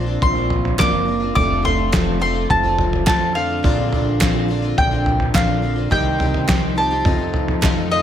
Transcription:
Already playing: A#1 A#2 F3 C4 D4 A#4 D5 A#5
0.06 C4 D4 F4
0.22 A#1 F3 C6, kick, floor tom
0.36 C4 D4 F4
0.50 floor tom
0.65 floor tom
0.78 F#1 A#2 F3 A#3 C4 D4 F4 A#4 D5 D6, kick, snare, clap
0.92 C4 D4 F4
1.06 F3 C4 D4 F4
1.20 C4 D4 F4
1.35 F1 F2 D3 F3 A3 C4 D4 F4 A4 D5 D6, kick, floor tom
1.63 F3 A3 C4 F4 C6, floor tom
1.92 F2 D3 F3 A3 C4 F4, kick, snare, clap
2.20 F3 A3 C4 F4 C6
2.34 F3 A3 C4 F4
2.50 F1 F3 A5, kick, floor tom
2.63 F3 A3 C4 F4
2.79 floor tom
2.93 floor tom
3.06 F2 D3 F3 A3 C4 F4 A5, kick, snare, clap
3.20 F3 A3 C4 F4
3.35 D3 F3 A3 C4 F4 F5
3.49 F3 A3 C4 F4
3.62 A#1 A#2 F3 C4 D4 F4 A#4 D5, kick, floor tom
3.92 F3 C4 D4 F4, floor tom
4.20 A#2 F3 C4 D4 F4, kick, snare, clap
4.48 F3 C4 D4 F4
4.62 C4 D4 F4
4.78 A#1 D3 G5, kick, floor tom
4.91 C4 D4 F4
5.06 floor tom
5.20 floor tom
5.34 A#1 A#2 D3 F3 C4 D4 F4 F5, kick, snare, clap
5.48 C4 D4 F4
5.62 F3 C4 D4 F4
5.76 C4 D4 F4
5.90 C2 C3 D#3 G3 C4 D#4 G4 C5 D#5 G5, kick, floor tom
6.18 D#3 C4 D#4 G4, floor tom
6.34 floor tom
6.47 C3 D#3 C4 D#4 G4, kick, snare, clap
6.75 D#3 F3 C4 D#4 G4 A5
6.91 C4 D#4 G4
7.04 F1 F2 C3 D#3 F3 A3 C4 D#4 F4 A4 D#5, kick, floor tom
7.18 D#3 A3 D#4 F4
7.34 floor tom
7.48 floor tom
7.61 F2 C3 D#3 A3 D#4 F4, kick, snare, clap
7.76 D#3 A3 D#4 F4
7.90 D#3 A3 D#4 F4 D#5

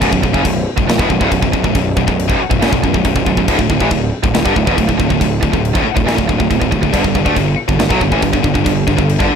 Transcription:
0.01 B0 B1 F#2, kick, crash
0.12 B0 B1 F#2, kick
0.23 B0 B1 F#2, kick
0.33 F#1 F#2 C#3, kick
0.44 B0 B1 F#2, kick, crash
0.77 B0 B1 F#2, kick
0.88 B0 B1 F#2, snare, crash
0.99 E1 E2 B2, kick
1.10 B0 B1 F#2, kick
1.21 D1 D2 A2, kick
1.32 B0 B1 F#2, kick, crash
1.42 B0 B1 F#2, kick
1.53 B0 B1 F#2, kick
1.64 B0 B1 F#2, kick
1.75 B0 B1 F#2, kick, crash
1.97 B0 B1 F#2, kick
2.07 B0 B1 F#2, kick
2.19 crash
2.28 B0 B1 F#2, kick
2.39 muted picked electric bass stroke, muted distorted electric guitar stroke
2.50 B0 B1 F#2, kick
2.61 F#1 F#2 C#3, snare, crash
2.72 B0 B1 F#2, kick
2.83 B0 B1 F#2, kick
2.94 B0 B1 F#2, kick
3.04 B0 B1 F#2, kick, crash
3.16 B0 B1 F#2, kick
3.26 B0 B1 F#2, kick
3.37 B0 B1 F#2, kick
3.48 D1 D2 A2, kick, crash
3.59 D1 D2 A2, kick
3.70 D1 D2 A2, kick
3.80 A1 A2 E3, kick
3.91 D1 D2 A2, kick, crash
4.24 D1 D2 A2, kick
4.34 D1 D2 A2, snare, crash
4.46 G1 G2 D3, kick
4.56 D1 D2 A2, kick
4.67 E1 E2 B2, kick
4.78 D1 D2 A2, kick, crash
4.89 D1 D2 A2, kick
5.00 D1 D2 A2, kick
5.10 D1 D2 A2, kick
5.21 D1 D2 A2, kick, crash
5.43 D1 D2 A2, kick
5.53 D1 D2 A2, kick
5.65 crash
5.75 D1 D2 A2, kick
5.85 muted picked electric bass stroke, muted distorted electric guitar stroke
5.96 D1 D2 A2, kick
6.06 A1 A2 E3, snare, crash
6.18 D1 D2 A2, kick
6.29 D1 D2 A2, kick
6.40 D1 D2 A2, kick
6.50 D1 D2 A2, kick, crash
6.61 D1 D2 A2, kick
6.71 D1 D2 A2, kick
6.83 D1 D2 A2, kick
6.92 G1 G2 D3, kick, crash
7.04 G1 G2 D3, kick
7.15 G1 G2 D3, kick
7.25 D2 D3 A3, kick
7.36 G1 G2 D3, kick, crash
7.68 G1 G2 D3, kick
7.79 G1 G2 D3, snare, crash
7.89 B1 B2 F#3, kick
8.01 G1 G2 D3, kick
8.11 A1 A2 E3, kick
8.22 G1 G2 D3, kick, crash
8.33 G1 G2 D3, kick
8.43 G1 G2 D3, kick
8.54 G1 G2 D3, kick
8.64 G1 G2 D3, kick, crash
8.87 G1 G2 D3, kick
8.97 G1 G2 D3, kick
9.09 crash
9.19 G1 G2 D3, kick
9.30 muted distorted electric guitar stroke, muted picked electric bass stroke

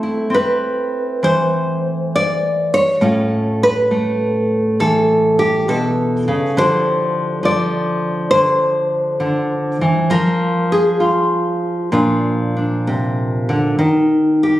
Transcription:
Already playing: A3 C4 A4
0.03 E4
0.30 C4
0.34 B4
1.23 E3 C5
2.16 D5
2.74 C#5
3.01 A2 A3 C#4 F4
3.63 B4
3.91 A3
4.80 E3 A4
5.39 G4
5.68 B2 A4
6.28 C#3
6.57 D3 F3 E4 G4 C5
7.43 F3 D5
8.31 D3 C5
9.20 D3
9.81 E3
10.10 F3 F4 A#4
10.72 G#4
11.00 F4
11.92 A#2 F3 D4
12.57 D4
12.87 C3
13.49 D3
13.79 D#3
14.43 G4

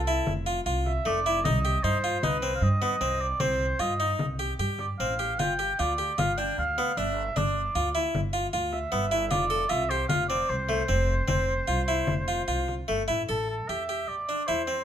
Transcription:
Already playing: C2 A4
0.07 E4, frame drum
0.27 F1, frame drum
0.46 F4
0.66 C2 F4
0.86 E5, frame drum
1.05 F1 A3 D5
1.26 E4
1.44 C2 D#4 D#5, frame drum
1.65 G4
1.84 G2 D#4 C5
2.04 F4, frame drum
2.23 C2 D#4 B4, frame drum
2.42 C4
2.55 F5
2.61 G2 D#5
2.82 B3, frame drum
3.01 C2 C4
3.21 D5
3.40 C2 C4 C5, frame drum
3.60 frame drum
3.79 G2 F4 D#5, frame drum
4.00 D#4, frame drum
4.19 C2, frame drum
4.39 G4, frame drum
4.59 G2 G4, frame drum
4.79 D5, frame drum
4.99 A1 C4 F5, frame drum
5.19 G4
5.39 G1 F4 G5, frame drum
5.59 G4
5.79 D2 F4 D5
5.98 G4, frame drum
6.18 G1 F4 F5, frame drum
6.38 D4 G5
6.58 D2 F5
6.78 B3, frame drum
6.97 G1 D4 E5
7.36 G1 D4 D5, frame drum
7.75 D2 F4
7.95 E4, frame drum
8.14 G1, frame drum
8.33 F4
8.53 D2 F4
8.72 E5, frame drum
8.92 G1 B3
9.11 E4
9.31 F1 F4 D5, frame drum
9.50 A4
9.69 C2 F4 E5
9.90 G4 C5, frame drum
10.09 F1 F4 F5, frame drum
10.29 C4 D5
10.50 C2 C5
10.69 A3, frame drum
10.89 F1 C4
11.28 F1 C4, frame drum
11.68 C2 F4
11.88 E4
12.07 F1, frame drum
12.28 F4
12.48 C2 F4
12.68 frame drum
12.88 G1 A3, frame drum
13.08 A1 E4
13.29 A1 A4
13.50 A4
13.69 E2 G4 E5
13.89 G4
14.08 A1 D5
14.29 D4
14.47 E2 E4 C5
14.67 C4

